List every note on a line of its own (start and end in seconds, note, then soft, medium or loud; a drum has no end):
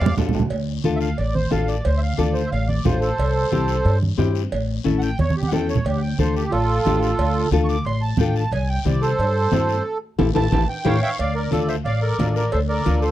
0.00 0.16 F2 medium
0.00 0.15 D5 medium
0.00 0.15 F5 loud
0.00 low timbale loud
0.06 low conga loud
0.17 0.33 E2 medium
0.17 0.41 D4 medium
0.17 0.41 F4 medium
0.17 0.42 A4 medium
0.17 low conga medium
0.17 low timbale medium
0.17 short guiro medium
0.29 low conga medium
0.33 0.50 D2 medium
0.33 low timbale medium
0.33 short guiro medium
0.40 low conga medium
0.50 0.78 D2 medium
0.50 cowbell loud
0.50 long guiro medium
0.84 1.12 D2 medium
0.84 1.08 D4 medium
0.84 1.08 F4 medium
0.84 1.08 A4 medium
0.84 high conga medium
0.84 short guiro medium
0.96 0.99 E5 medium
1.01 1.17 F5 medium
1.01 short guiro medium
1.18 1.45 A1 medium
1.18 1.34 D5 medium
1.18 cowbell medium
1.18 long guiro medium
1.35 1.51 C5 medium
1.35 high conga medium
1.51 1.79 A1 medium
1.51 1.75 D4 medium
1.51 1.75 F4 medium
1.51 1.75 A4 medium
1.51 1.68 F5 medium
1.51 high conga medium
1.51 low timbale medium
1.51 short guiro medium
1.68 1.84 D5 medium
1.68 short guiro medium
1.85 2.12 D2 medium
1.85 2.01 C5 medium
1.85 cowbell loud
1.85 long guiro medium
1.98 2.00 E5 medium
2.02 2.18 F5 medium
2.18 2.45 D2 medium
2.18 2.42 D4 medium
2.18 2.42 F4 medium
2.18 2.42 A4 medium
2.18 2.34 D5 medium
2.18 high conga medium
2.18 short guiro medium
2.34 2.51 C5 medium
2.34 short guiro medium
2.46 2.49 E5 medium
2.52 2.79 A1 medium
2.52 2.68 F5 loud
2.52 cowbell medium
2.52 long guiro medium
2.68 2.84 D5 medium
2.68 high conga medium
2.85 3.12 A1 medium
2.85 3.08 D4 medium
2.85 3.08 F4 medium
2.85 3.09 A4 medium
2.85 3.00 C5 medium
2.85 high conga medium
2.85 low conga medium
2.85 low timbale medium
2.85 short guiro medium
3.00 3.97 A4 medium
3.00 3.99 C5 loud
3.00 short guiro medium
3.18 3.45 C2 medium
3.18 cowbell loud
3.18 long guiro medium
3.51 3.78 C2 medium
3.51 3.75 C4 medium
3.51 3.75 E4 medium
3.51 3.76 G4 loud
3.51 high conga medium
3.51 short guiro medium
3.68 short guiro medium
3.85 4.12 G2 loud
3.85 cowbell medium
3.85 long guiro medium
4.02 high conga medium
4.18 4.45 G2 medium
4.18 4.42 C4 medium
4.18 4.42 E4 medium
4.18 4.42 G4 loud
4.18 high conga medium
4.18 low timbale medium
4.18 short guiro medium
4.35 short guiro medium
4.52 4.79 A1 loud
4.52 cowbell loud
4.52 long guiro medium
4.84 5.12 A1 medium
4.84 5.08 C#4 medium
4.84 5.09 E4 medium
4.84 5.09 A4 loud
4.84 high conga medium
4.84 short guiro medium
4.98 5.01 F#5 medium
4.98 short guiro medium
5.03 5.19 G5 loud
5.18 5.46 E2 medium
5.18 5.36 C#5 loud
5.18 cowbell medium
5.18 high conga medium
5.18 long guiro medium
5.30 high conga loud
5.36 5.52 G4 medium
5.43 high conga medium
5.48 5.78 E2 medium
5.48 5.75 C#4 medium
5.48 5.50 F#5 medium
5.48 short guiro medium
5.52 5.75 E4 medium
5.52 5.76 A4 medium
5.52 5.69 G5 medium
5.52 low timbale medium
5.69 5.85 C#5 medium
5.69 short guiro medium
5.75 low conga medium
5.85 6.12 D2 medium
5.85 6.02 G4 medium
5.85 cowbell loud
5.85 long guiro medium
5.97 6.00 F#5 medium
6.02 6.18 G5 medium
6.19 6.45 D2 medium
6.19 6.42 D4 medium
6.19 6.42 F4 medium
6.19 6.42 A4 medium
6.19 6.35 C5 medium
6.19 high conga medium
6.19 short guiro medium
6.36 6.52 G4 medium
6.36 short guiro medium
6.51 6.79 A1 loud
6.51 7.48 F4 loud
6.51 7.49 A4 loud
6.51 cowbell medium
6.51 long guiro medium
6.85 7.12 A1 medium
6.85 7.09 D4 medium
6.85 7.09 F4 medium
6.85 7.09 G4 medium
6.85 high conga medium
6.85 low timbale medium
6.85 short guiro medium
7.03 short guiro medium
7.19 7.45 D2 medium
7.19 cowbell loud
7.19 long guiro medium
7.51 7.78 D2 medium
7.51 7.75 D4 medium
7.51 7.76 F4 medium
7.51 7.76 A4 medium
7.51 high conga medium
7.51 short guiro medium
7.64 7.67 C#6 medium
7.69 7.85 D6 loud
7.69 short guiro medium
7.85 8.12 A1 medium
7.85 8.02 C6 medium
7.85 cowbell medium
7.85 long guiro medium
8.02 8.18 A5 medium
8.17 8.45 A1 medium
8.17 8.43 D4 medium
8.17 8.43 F4 medium
8.17 8.43 A4 medium
8.17 8.35 G5 medium
8.17 high conga medium
8.17 low conga medium
8.17 short guiro medium
8.35 8.52 A5 medium
8.35 short guiro medium
8.52 8.78 C2 loud
8.52 8.69 G#5 loud
8.52 cowbell loud
8.52 long guiro medium
8.69 8.85 G5 medium
8.85 9.12 C2 medium
8.85 9.09 C4 medium
8.85 9.09 E4 medium
8.85 9.09 G4 medium
8.85 9.02 D5 medium
8.85 high conga medium
8.85 short guiro medium
9.02 9.98 A4 loud
9.02 9.83 C5 loud
9.02 short guiro medium
9.19 9.45 G2 loud
9.19 cowbell medium
9.19 long guiro medium
9.51 9.79 G2 medium
9.51 9.75 C4 medium
9.51 9.75 E4 medium
9.51 9.76 A4 medium
9.51 high conga medium
9.51 low timbale medium
9.51 short guiro medium
9.69 short guiro medium
10.18 10.31 A1 loud
10.18 10.29 E4 loud
10.18 10.29 G4 loud
10.18 10.29 A4 loud
10.18 high conga loud
10.18 high timbale loud
10.18 long guiro loud
10.34 10.48 A1 loud
10.34 10.46 E4 medium
10.34 10.46 G4 medium
10.34 10.46 A4 loud
10.34 10.68 A5 loud
10.34 high conga medium
10.34 high timbale loud
10.34 long guiro loud
10.52 10.64 A1 loud
10.52 10.63 E4 loud
10.52 10.63 G4 loud
10.52 10.63 A4 loud
10.52 high conga loud
10.52 high timbale loud
10.69 11.01 G5 medium
10.85 10.98 A1 loud
10.85 10.96 E4 loud
10.85 10.96 G4 loud
10.85 10.96 A4 medium
10.85 11.00 C#5 medium
10.85 11.02 C#5 medium
10.85 11.01 F5 loud
10.85 high conga loud
10.85 high timbale loud
10.85 long guiro loud
11.01 11.17 C#5 loud
11.01 11.10 E5 medium
11.01 11.11 E5 medium
11.01 11.18 F5 loud
11.01 11.10 G5 loud
11.19 11.46 D2 medium
11.19 11.33 D5 medium
11.19 11.35 D5 medium
11.19 11.34 F5 loud
11.19 cowbell loud
11.19 high conga soft
11.35 11.51 A#4 medium
11.35 11.52 A#4 medium
11.35 11.50 D5 loud
11.51 11.79 D2 medium
11.51 11.75 D4 medium
11.51 11.75 F4 medium
11.51 11.67 A4 medium
11.51 11.75 A4 medium
11.51 11.68 A4 medium
11.51 11.69 D5 medium
11.51 cowbell medium
11.51 high conga medium
11.51 short guiro medium
11.68 11.76 C5 medium
11.68 11.77 C5 medium
11.68 11.76 E5 medium
11.68 short guiro medium
11.85 12.12 A1 medium
11.85 12.00 D5 medium
11.85 12.01 D5 medium
11.85 12.01 F5 loud
11.85 cowbell medium
11.85 high conga soft
11.85 long guiro medium
12.01 12.33 A4 medium
12.01 12.33 A#4 medium
12.01 12.35 D5 loud
12.18 12.45 A1 medium
12.18 12.42 D4 medium
12.18 12.42 F4 medium
12.18 12.42 A4 medium
12.18 cowbell medium
12.18 high conga medium
12.18 low timbale medium
12.18 short guiro medium
12.36 12.51 A#4 medium
12.36 12.52 D5 medium
12.36 short guiro medium
12.52 12.80 D2 medium
12.52 12.59 A4 medium
12.52 12.60 A4 medium
12.52 12.60 C5 medium
12.52 cowbell loud
12.52 high conga soft
12.52 long guiro medium
12.68 13.00 A4 medium
12.68 13.00 A#4 medium
12.68 13.03 D5 loud
12.85 13.11 D2 medium
12.85 13.09 D4 medium
12.85 13.09 F4 medium
12.85 13.09 A4 medium
12.85 cowbell medium
12.85 high conga medium
12.85 short guiro medium
13.02 13.10 A4 medium
13.02 13.10 C5 medium
13.02 short guiro medium